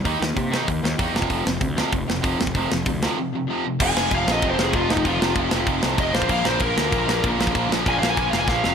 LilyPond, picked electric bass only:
\new Staff \with { instrumentName = "Picked electric bass" } { \clef bass \time 4/4 \key bes \lydian \tempo 4 = 192 ees,8 ees,8 c4 ees,8 ees,8 e,8 f,,8 | f,,8 f,,8 d,4 f,,8 f,,8 f,,8 f,,8 | f,,8 f,,8 d,4 r2 | f,,8 f,,8 f,,8 bes,,8 f,,8 f,,8 f,,8 f,,8 |
f,,8 f,,8 f,,8 f,,8 f,,8 c,8 f,,8 bes,,8 | bes,,8 bes,,8 bes,,8 d,8 bes,,8 bes,,8 bes,,8 bes,,8 | bes,,8 bes,,8 bes,,8 bes,,8 bes,,8 f,,8 bes,,8 f,,8 | }